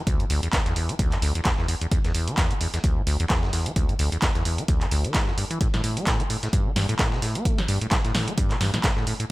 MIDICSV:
0, 0, Header, 1, 3, 480
1, 0, Start_track
1, 0, Key_signature, 1, "minor"
1, 0, Tempo, 461538
1, 72, Time_signature, 4, 2, 24, 8
1, 9686, End_track
2, 0, Start_track
2, 0, Title_t, "Acid bass"
2, 0, Program_c, 0, 38
2, 72, Note_on_c, 0, 38, 82
2, 207, Note_on_c, 0, 47, 74
2, 223, Note_off_c, 0, 38, 0
2, 265, Note_off_c, 0, 47, 0
2, 312, Note_on_c, 0, 38, 97
2, 423, Note_off_c, 0, 38, 0
2, 447, Note_on_c, 0, 40, 74
2, 505, Note_off_c, 0, 40, 0
2, 552, Note_on_c, 0, 40, 81
2, 626, Note_off_c, 0, 40, 0
2, 687, Note_on_c, 0, 40, 74
2, 773, Note_off_c, 0, 40, 0
2, 791, Note_on_c, 0, 40, 78
2, 927, Note_on_c, 0, 55, 76
2, 942, Note_off_c, 0, 40, 0
2, 984, Note_off_c, 0, 55, 0
2, 1031, Note_on_c, 0, 38, 85
2, 1167, Note_on_c, 0, 43, 74
2, 1182, Note_off_c, 0, 38, 0
2, 1224, Note_off_c, 0, 43, 0
2, 1271, Note_on_c, 0, 38, 101
2, 1383, Note_off_c, 0, 38, 0
2, 1406, Note_on_c, 0, 40, 74
2, 1464, Note_off_c, 0, 40, 0
2, 1511, Note_on_c, 0, 40, 86
2, 1586, Note_off_c, 0, 40, 0
2, 1647, Note_on_c, 0, 40, 74
2, 1733, Note_off_c, 0, 40, 0
2, 1752, Note_on_c, 0, 40, 71
2, 1826, Note_off_c, 0, 40, 0
2, 1887, Note_on_c, 0, 40, 78
2, 1945, Note_off_c, 0, 40, 0
2, 1992, Note_on_c, 0, 40, 83
2, 2066, Note_off_c, 0, 40, 0
2, 2127, Note_on_c, 0, 40, 76
2, 2213, Note_off_c, 0, 40, 0
2, 2232, Note_on_c, 0, 40, 74
2, 2367, Note_on_c, 0, 52, 98
2, 2383, Note_off_c, 0, 40, 0
2, 2454, Note_off_c, 0, 52, 0
2, 2472, Note_on_c, 0, 40, 83
2, 2607, Note_on_c, 0, 52, 74
2, 2623, Note_off_c, 0, 40, 0
2, 2642, Note_off_c, 0, 52, 0
2, 2712, Note_on_c, 0, 40, 79
2, 2786, Note_off_c, 0, 40, 0
2, 2847, Note_on_c, 0, 40, 73
2, 2905, Note_off_c, 0, 40, 0
2, 2952, Note_on_c, 0, 38, 84
2, 3088, Note_on_c, 0, 47, 77
2, 3103, Note_off_c, 0, 38, 0
2, 3145, Note_off_c, 0, 47, 0
2, 3192, Note_on_c, 0, 38, 100
2, 3304, Note_off_c, 0, 38, 0
2, 3327, Note_on_c, 0, 40, 98
2, 3385, Note_off_c, 0, 40, 0
2, 3432, Note_on_c, 0, 40, 86
2, 3568, Note_on_c, 0, 43, 76
2, 3583, Note_off_c, 0, 40, 0
2, 3654, Note_off_c, 0, 43, 0
2, 3672, Note_on_c, 0, 40, 72
2, 3808, Note_on_c, 0, 55, 79
2, 3823, Note_off_c, 0, 40, 0
2, 3865, Note_off_c, 0, 55, 0
2, 3912, Note_on_c, 0, 38, 82
2, 4048, Note_on_c, 0, 47, 75
2, 4063, Note_off_c, 0, 38, 0
2, 4105, Note_off_c, 0, 47, 0
2, 4151, Note_on_c, 0, 38, 100
2, 4263, Note_off_c, 0, 38, 0
2, 4287, Note_on_c, 0, 40, 75
2, 4344, Note_off_c, 0, 40, 0
2, 4391, Note_on_c, 0, 40, 81
2, 4466, Note_off_c, 0, 40, 0
2, 4527, Note_on_c, 0, 40, 73
2, 4613, Note_off_c, 0, 40, 0
2, 4632, Note_on_c, 0, 40, 79
2, 4766, Note_on_c, 0, 55, 74
2, 4782, Note_off_c, 0, 40, 0
2, 4824, Note_off_c, 0, 55, 0
2, 4871, Note_on_c, 0, 38, 85
2, 5007, Note_on_c, 0, 43, 78
2, 5022, Note_off_c, 0, 38, 0
2, 5064, Note_off_c, 0, 43, 0
2, 5111, Note_on_c, 0, 38, 95
2, 5247, Note_on_c, 0, 52, 97
2, 5262, Note_off_c, 0, 38, 0
2, 5351, Note_on_c, 0, 43, 83
2, 5367, Note_off_c, 0, 52, 0
2, 5487, Note_on_c, 0, 40, 75
2, 5502, Note_off_c, 0, 43, 0
2, 5544, Note_off_c, 0, 40, 0
2, 5592, Note_on_c, 0, 43, 72
2, 5666, Note_off_c, 0, 43, 0
2, 5727, Note_on_c, 0, 52, 79
2, 5813, Note_off_c, 0, 52, 0
2, 5831, Note_on_c, 0, 45, 82
2, 5906, Note_off_c, 0, 45, 0
2, 5967, Note_on_c, 0, 45, 78
2, 6053, Note_off_c, 0, 45, 0
2, 6072, Note_on_c, 0, 45, 76
2, 6207, Note_on_c, 0, 57, 94
2, 6222, Note_off_c, 0, 45, 0
2, 6293, Note_off_c, 0, 57, 0
2, 6311, Note_on_c, 0, 45, 82
2, 6447, Note_on_c, 0, 57, 73
2, 6463, Note_off_c, 0, 45, 0
2, 6482, Note_off_c, 0, 57, 0
2, 6551, Note_on_c, 0, 45, 75
2, 6626, Note_off_c, 0, 45, 0
2, 6687, Note_on_c, 0, 45, 73
2, 6745, Note_off_c, 0, 45, 0
2, 6791, Note_on_c, 0, 43, 84
2, 6927, Note_on_c, 0, 52, 75
2, 6942, Note_off_c, 0, 43, 0
2, 6984, Note_off_c, 0, 52, 0
2, 7031, Note_on_c, 0, 43, 99
2, 7143, Note_off_c, 0, 43, 0
2, 7167, Note_on_c, 0, 45, 97
2, 7224, Note_off_c, 0, 45, 0
2, 7272, Note_on_c, 0, 45, 85
2, 7406, Note_on_c, 0, 48, 74
2, 7422, Note_off_c, 0, 45, 0
2, 7493, Note_off_c, 0, 48, 0
2, 7511, Note_on_c, 0, 45, 71
2, 7646, Note_on_c, 0, 60, 79
2, 7662, Note_off_c, 0, 45, 0
2, 7751, Note_on_c, 0, 57, 99
2, 7766, Note_off_c, 0, 60, 0
2, 7887, Note_on_c, 0, 52, 75
2, 7902, Note_off_c, 0, 57, 0
2, 7944, Note_off_c, 0, 52, 0
2, 7990, Note_on_c, 0, 43, 102
2, 8103, Note_off_c, 0, 43, 0
2, 8127, Note_on_c, 0, 45, 75
2, 8184, Note_off_c, 0, 45, 0
2, 8231, Note_on_c, 0, 45, 80
2, 8306, Note_off_c, 0, 45, 0
2, 8366, Note_on_c, 0, 45, 75
2, 8453, Note_off_c, 0, 45, 0
2, 8471, Note_on_c, 0, 45, 77
2, 8606, Note_on_c, 0, 60, 78
2, 8621, Note_off_c, 0, 45, 0
2, 8664, Note_off_c, 0, 60, 0
2, 8711, Note_on_c, 0, 43, 87
2, 8846, Note_on_c, 0, 47, 79
2, 8862, Note_off_c, 0, 43, 0
2, 8904, Note_off_c, 0, 47, 0
2, 8951, Note_on_c, 0, 43, 97
2, 9063, Note_off_c, 0, 43, 0
2, 9086, Note_on_c, 0, 45, 76
2, 9144, Note_off_c, 0, 45, 0
2, 9190, Note_on_c, 0, 45, 85
2, 9265, Note_off_c, 0, 45, 0
2, 9326, Note_on_c, 0, 45, 75
2, 9413, Note_off_c, 0, 45, 0
2, 9431, Note_on_c, 0, 45, 75
2, 9506, Note_off_c, 0, 45, 0
2, 9566, Note_on_c, 0, 45, 80
2, 9624, Note_off_c, 0, 45, 0
2, 9686, End_track
3, 0, Start_track
3, 0, Title_t, "Drums"
3, 71, Note_on_c, 9, 36, 120
3, 71, Note_on_c, 9, 42, 83
3, 72, Note_off_c, 9, 42, 0
3, 72, Note_on_c, 9, 42, 79
3, 175, Note_off_c, 9, 36, 0
3, 176, Note_off_c, 9, 42, 0
3, 207, Note_on_c, 9, 42, 34
3, 311, Note_off_c, 9, 42, 0
3, 312, Note_on_c, 9, 42, 65
3, 312, Note_on_c, 9, 46, 102
3, 416, Note_off_c, 9, 42, 0
3, 416, Note_off_c, 9, 46, 0
3, 448, Note_on_c, 9, 42, 52
3, 549, Note_on_c, 9, 39, 118
3, 551, Note_off_c, 9, 42, 0
3, 551, Note_on_c, 9, 36, 121
3, 551, Note_on_c, 9, 38, 112
3, 551, Note_on_c, 9, 42, 87
3, 552, Note_off_c, 9, 42, 0
3, 552, Note_on_c, 9, 42, 73
3, 653, Note_off_c, 9, 39, 0
3, 655, Note_off_c, 9, 36, 0
3, 655, Note_off_c, 9, 38, 0
3, 656, Note_off_c, 9, 42, 0
3, 687, Note_on_c, 9, 38, 34
3, 687, Note_on_c, 9, 42, 34
3, 791, Note_off_c, 9, 38, 0
3, 791, Note_off_c, 9, 42, 0
3, 792, Note_on_c, 9, 42, 68
3, 792, Note_on_c, 9, 46, 86
3, 896, Note_off_c, 9, 42, 0
3, 896, Note_off_c, 9, 46, 0
3, 927, Note_on_c, 9, 42, 49
3, 1031, Note_off_c, 9, 42, 0
3, 1031, Note_on_c, 9, 36, 120
3, 1031, Note_on_c, 9, 42, 87
3, 1032, Note_off_c, 9, 42, 0
3, 1032, Note_on_c, 9, 42, 76
3, 1135, Note_off_c, 9, 36, 0
3, 1136, Note_off_c, 9, 42, 0
3, 1165, Note_on_c, 9, 39, 38
3, 1168, Note_on_c, 9, 42, 35
3, 1269, Note_off_c, 9, 39, 0
3, 1271, Note_off_c, 9, 42, 0
3, 1271, Note_on_c, 9, 42, 65
3, 1272, Note_on_c, 9, 46, 104
3, 1375, Note_off_c, 9, 42, 0
3, 1376, Note_off_c, 9, 46, 0
3, 1407, Note_on_c, 9, 42, 52
3, 1509, Note_on_c, 9, 39, 118
3, 1511, Note_off_c, 9, 42, 0
3, 1511, Note_on_c, 9, 38, 110
3, 1511, Note_on_c, 9, 42, 80
3, 1512, Note_on_c, 9, 36, 116
3, 1613, Note_off_c, 9, 39, 0
3, 1615, Note_off_c, 9, 38, 0
3, 1615, Note_off_c, 9, 42, 0
3, 1616, Note_off_c, 9, 36, 0
3, 1647, Note_on_c, 9, 38, 39
3, 1751, Note_off_c, 9, 38, 0
3, 1752, Note_on_c, 9, 42, 66
3, 1752, Note_on_c, 9, 46, 96
3, 1856, Note_off_c, 9, 42, 0
3, 1856, Note_off_c, 9, 46, 0
3, 1887, Note_on_c, 9, 42, 49
3, 1991, Note_off_c, 9, 42, 0
3, 1991, Note_on_c, 9, 42, 76
3, 1992, Note_off_c, 9, 42, 0
3, 1992, Note_on_c, 9, 36, 122
3, 1992, Note_on_c, 9, 42, 84
3, 2096, Note_off_c, 9, 36, 0
3, 2096, Note_off_c, 9, 42, 0
3, 2127, Note_on_c, 9, 38, 38
3, 2127, Note_on_c, 9, 42, 32
3, 2231, Note_off_c, 9, 38, 0
3, 2231, Note_off_c, 9, 42, 0
3, 2231, Note_on_c, 9, 46, 105
3, 2232, Note_on_c, 9, 42, 65
3, 2335, Note_off_c, 9, 46, 0
3, 2336, Note_off_c, 9, 42, 0
3, 2367, Note_on_c, 9, 42, 51
3, 2469, Note_on_c, 9, 39, 115
3, 2471, Note_off_c, 9, 42, 0
3, 2471, Note_on_c, 9, 42, 73
3, 2472, Note_off_c, 9, 42, 0
3, 2472, Note_on_c, 9, 36, 123
3, 2472, Note_on_c, 9, 38, 114
3, 2472, Note_on_c, 9, 42, 86
3, 2573, Note_off_c, 9, 39, 0
3, 2576, Note_off_c, 9, 36, 0
3, 2576, Note_off_c, 9, 38, 0
3, 2576, Note_off_c, 9, 42, 0
3, 2607, Note_on_c, 9, 42, 41
3, 2711, Note_off_c, 9, 42, 0
3, 2711, Note_on_c, 9, 42, 68
3, 2711, Note_on_c, 9, 46, 88
3, 2815, Note_off_c, 9, 42, 0
3, 2815, Note_off_c, 9, 46, 0
3, 2847, Note_on_c, 9, 38, 50
3, 2847, Note_on_c, 9, 42, 49
3, 2951, Note_off_c, 9, 38, 0
3, 2951, Note_off_c, 9, 42, 0
3, 2951, Note_on_c, 9, 42, 89
3, 2952, Note_off_c, 9, 42, 0
3, 2952, Note_on_c, 9, 36, 120
3, 2952, Note_on_c, 9, 42, 74
3, 3056, Note_off_c, 9, 36, 0
3, 3056, Note_off_c, 9, 42, 0
3, 3191, Note_on_c, 9, 46, 105
3, 3192, Note_on_c, 9, 42, 65
3, 3295, Note_off_c, 9, 46, 0
3, 3296, Note_off_c, 9, 42, 0
3, 3327, Note_on_c, 9, 42, 51
3, 3429, Note_on_c, 9, 39, 117
3, 3431, Note_off_c, 9, 42, 0
3, 3431, Note_on_c, 9, 36, 119
3, 3431, Note_on_c, 9, 38, 112
3, 3431, Note_on_c, 9, 42, 82
3, 3533, Note_off_c, 9, 39, 0
3, 3535, Note_off_c, 9, 36, 0
3, 3535, Note_off_c, 9, 38, 0
3, 3535, Note_off_c, 9, 42, 0
3, 3567, Note_on_c, 9, 38, 56
3, 3671, Note_off_c, 9, 38, 0
3, 3671, Note_on_c, 9, 46, 93
3, 3672, Note_on_c, 9, 38, 53
3, 3672, Note_on_c, 9, 42, 65
3, 3775, Note_off_c, 9, 46, 0
3, 3776, Note_off_c, 9, 38, 0
3, 3776, Note_off_c, 9, 42, 0
3, 3807, Note_on_c, 9, 42, 49
3, 3911, Note_off_c, 9, 42, 0
3, 3911, Note_on_c, 9, 42, 87
3, 3912, Note_on_c, 9, 36, 115
3, 4015, Note_off_c, 9, 42, 0
3, 4016, Note_off_c, 9, 36, 0
3, 4047, Note_on_c, 9, 42, 33
3, 4151, Note_off_c, 9, 42, 0
3, 4151, Note_on_c, 9, 42, 63
3, 4151, Note_on_c, 9, 46, 105
3, 4255, Note_off_c, 9, 42, 0
3, 4255, Note_off_c, 9, 46, 0
3, 4288, Note_on_c, 9, 42, 49
3, 4390, Note_on_c, 9, 39, 113
3, 4391, Note_off_c, 9, 42, 0
3, 4391, Note_on_c, 9, 36, 123
3, 4391, Note_on_c, 9, 38, 112
3, 4391, Note_on_c, 9, 42, 84
3, 4392, Note_off_c, 9, 42, 0
3, 4392, Note_on_c, 9, 42, 73
3, 4494, Note_off_c, 9, 39, 0
3, 4495, Note_off_c, 9, 36, 0
3, 4495, Note_off_c, 9, 38, 0
3, 4496, Note_off_c, 9, 42, 0
3, 4527, Note_on_c, 9, 38, 35
3, 4528, Note_on_c, 9, 42, 33
3, 4631, Note_off_c, 9, 38, 0
3, 4631, Note_off_c, 9, 42, 0
3, 4631, Note_on_c, 9, 42, 67
3, 4631, Note_on_c, 9, 46, 91
3, 4735, Note_off_c, 9, 42, 0
3, 4735, Note_off_c, 9, 46, 0
3, 4767, Note_on_c, 9, 42, 46
3, 4871, Note_off_c, 9, 42, 0
3, 4871, Note_on_c, 9, 36, 118
3, 4871, Note_on_c, 9, 42, 86
3, 4975, Note_off_c, 9, 36, 0
3, 4975, Note_off_c, 9, 42, 0
3, 5004, Note_on_c, 9, 39, 35
3, 5007, Note_on_c, 9, 42, 35
3, 5108, Note_off_c, 9, 39, 0
3, 5111, Note_off_c, 9, 42, 0
3, 5111, Note_on_c, 9, 42, 67
3, 5111, Note_on_c, 9, 46, 107
3, 5215, Note_off_c, 9, 42, 0
3, 5215, Note_off_c, 9, 46, 0
3, 5247, Note_on_c, 9, 42, 48
3, 5349, Note_on_c, 9, 39, 111
3, 5351, Note_off_c, 9, 42, 0
3, 5351, Note_on_c, 9, 36, 115
3, 5351, Note_on_c, 9, 38, 111
3, 5351, Note_on_c, 9, 42, 70
3, 5453, Note_off_c, 9, 39, 0
3, 5455, Note_off_c, 9, 36, 0
3, 5455, Note_off_c, 9, 38, 0
3, 5455, Note_off_c, 9, 42, 0
3, 5487, Note_on_c, 9, 38, 41
3, 5591, Note_off_c, 9, 38, 0
3, 5591, Note_on_c, 9, 42, 67
3, 5592, Note_on_c, 9, 46, 94
3, 5695, Note_off_c, 9, 42, 0
3, 5696, Note_off_c, 9, 46, 0
3, 5727, Note_on_c, 9, 42, 49
3, 5831, Note_off_c, 9, 42, 0
3, 5831, Note_on_c, 9, 36, 112
3, 5831, Note_on_c, 9, 42, 83
3, 5832, Note_off_c, 9, 42, 0
3, 5832, Note_on_c, 9, 42, 76
3, 5935, Note_off_c, 9, 36, 0
3, 5936, Note_off_c, 9, 42, 0
3, 5967, Note_on_c, 9, 38, 58
3, 5967, Note_on_c, 9, 42, 33
3, 6071, Note_off_c, 9, 38, 0
3, 6071, Note_off_c, 9, 42, 0
3, 6071, Note_on_c, 9, 42, 64
3, 6072, Note_on_c, 9, 46, 101
3, 6175, Note_off_c, 9, 42, 0
3, 6176, Note_off_c, 9, 46, 0
3, 6208, Note_on_c, 9, 42, 50
3, 6310, Note_on_c, 9, 39, 105
3, 6311, Note_off_c, 9, 42, 0
3, 6311, Note_on_c, 9, 38, 115
3, 6311, Note_on_c, 9, 42, 84
3, 6312, Note_off_c, 9, 42, 0
3, 6312, Note_on_c, 9, 36, 120
3, 6312, Note_on_c, 9, 42, 73
3, 6414, Note_off_c, 9, 39, 0
3, 6415, Note_off_c, 9, 38, 0
3, 6416, Note_off_c, 9, 36, 0
3, 6416, Note_off_c, 9, 42, 0
3, 6447, Note_on_c, 9, 42, 41
3, 6448, Note_off_c, 9, 42, 0
3, 6448, Note_on_c, 9, 42, 33
3, 6551, Note_off_c, 9, 42, 0
3, 6551, Note_on_c, 9, 42, 68
3, 6552, Note_on_c, 9, 46, 87
3, 6655, Note_off_c, 9, 42, 0
3, 6656, Note_off_c, 9, 46, 0
3, 6686, Note_on_c, 9, 38, 51
3, 6687, Note_on_c, 9, 42, 48
3, 6790, Note_off_c, 9, 38, 0
3, 6791, Note_off_c, 9, 42, 0
3, 6791, Note_on_c, 9, 42, 85
3, 6792, Note_off_c, 9, 42, 0
3, 6792, Note_on_c, 9, 36, 116
3, 6792, Note_on_c, 9, 42, 73
3, 6896, Note_off_c, 9, 36, 0
3, 6896, Note_off_c, 9, 42, 0
3, 7031, Note_on_c, 9, 42, 65
3, 7032, Note_on_c, 9, 38, 62
3, 7032, Note_on_c, 9, 46, 98
3, 7135, Note_off_c, 9, 42, 0
3, 7136, Note_off_c, 9, 38, 0
3, 7136, Note_off_c, 9, 46, 0
3, 7167, Note_on_c, 9, 42, 51
3, 7270, Note_on_c, 9, 39, 113
3, 7271, Note_off_c, 9, 42, 0
3, 7271, Note_on_c, 9, 36, 113
3, 7271, Note_on_c, 9, 38, 110
3, 7271, Note_on_c, 9, 42, 85
3, 7272, Note_off_c, 9, 42, 0
3, 7272, Note_on_c, 9, 42, 73
3, 7374, Note_off_c, 9, 39, 0
3, 7375, Note_off_c, 9, 36, 0
3, 7375, Note_off_c, 9, 38, 0
3, 7376, Note_off_c, 9, 42, 0
3, 7406, Note_on_c, 9, 38, 57
3, 7510, Note_off_c, 9, 38, 0
3, 7511, Note_on_c, 9, 38, 53
3, 7511, Note_on_c, 9, 42, 64
3, 7512, Note_on_c, 9, 46, 92
3, 7615, Note_off_c, 9, 38, 0
3, 7615, Note_off_c, 9, 42, 0
3, 7616, Note_off_c, 9, 46, 0
3, 7647, Note_on_c, 9, 42, 49
3, 7751, Note_off_c, 9, 42, 0
3, 7751, Note_on_c, 9, 36, 112
3, 7751, Note_on_c, 9, 42, 86
3, 7752, Note_off_c, 9, 42, 0
3, 7752, Note_on_c, 9, 42, 75
3, 7855, Note_off_c, 9, 36, 0
3, 7856, Note_off_c, 9, 42, 0
3, 7887, Note_on_c, 9, 38, 61
3, 7887, Note_on_c, 9, 42, 34
3, 7991, Note_off_c, 9, 38, 0
3, 7991, Note_off_c, 9, 42, 0
3, 7991, Note_on_c, 9, 42, 65
3, 7992, Note_on_c, 9, 46, 95
3, 8095, Note_off_c, 9, 42, 0
3, 8096, Note_off_c, 9, 46, 0
3, 8127, Note_on_c, 9, 42, 52
3, 8230, Note_on_c, 9, 39, 112
3, 8231, Note_off_c, 9, 42, 0
3, 8231, Note_on_c, 9, 36, 112
3, 8231, Note_on_c, 9, 38, 112
3, 8231, Note_on_c, 9, 42, 85
3, 8232, Note_off_c, 9, 42, 0
3, 8232, Note_on_c, 9, 42, 74
3, 8334, Note_off_c, 9, 39, 0
3, 8335, Note_off_c, 9, 36, 0
3, 8335, Note_off_c, 9, 38, 0
3, 8336, Note_off_c, 9, 42, 0
3, 8366, Note_on_c, 9, 38, 36
3, 8368, Note_on_c, 9, 42, 34
3, 8470, Note_off_c, 9, 38, 0
3, 8471, Note_off_c, 9, 42, 0
3, 8471, Note_on_c, 9, 42, 68
3, 8472, Note_on_c, 9, 38, 85
3, 8472, Note_on_c, 9, 46, 81
3, 8575, Note_off_c, 9, 42, 0
3, 8576, Note_off_c, 9, 38, 0
3, 8576, Note_off_c, 9, 46, 0
3, 8608, Note_on_c, 9, 42, 50
3, 8711, Note_off_c, 9, 42, 0
3, 8711, Note_on_c, 9, 36, 114
3, 8711, Note_on_c, 9, 42, 87
3, 8712, Note_off_c, 9, 42, 0
3, 8712, Note_on_c, 9, 42, 78
3, 8815, Note_off_c, 9, 36, 0
3, 8816, Note_off_c, 9, 42, 0
3, 8845, Note_on_c, 9, 39, 33
3, 8847, Note_on_c, 9, 42, 36
3, 8949, Note_off_c, 9, 39, 0
3, 8951, Note_off_c, 9, 42, 0
3, 8951, Note_on_c, 9, 42, 66
3, 8952, Note_on_c, 9, 38, 63
3, 8952, Note_on_c, 9, 46, 100
3, 9055, Note_off_c, 9, 42, 0
3, 9056, Note_off_c, 9, 38, 0
3, 9056, Note_off_c, 9, 46, 0
3, 9087, Note_on_c, 9, 38, 63
3, 9087, Note_on_c, 9, 42, 52
3, 9190, Note_on_c, 9, 39, 109
3, 9191, Note_off_c, 9, 38, 0
3, 9191, Note_off_c, 9, 42, 0
3, 9191, Note_on_c, 9, 36, 112
3, 9191, Note_on_c, 9, 38, 115
3, 9191, Note_on_c, 9, 42, 82
3, 9192, Note_off_c, 9, 42, 0
3, 9192, Note_on_c, 9, 42, 75
3, 9294, Note_off_c, 9, 39, 0
3, 9295, Note_off_c, 9, 36, 0
3, 9295, Note_off_c, 9, 38, 0
3, 9296, Note_off_c, 9, 42, 0
3, 9327, Note_on_c, 9, 38, 42
3, 9431, Note_off_c, 9, 38, 0
3, 9431, Note_on_c, 9, 42, 67
3, 9432, Note_on_c, 9, 46, 88
3, 9535, Note_off_c, 9, 42, 0
3, 9536, Note_off_c, 9, 46, 0
3, 9567, Note_on_c, 9, 42, 50
3, 9671, Note_off_c, 9, 42, 0
3, 9686, End_track
0, 0, End_of_file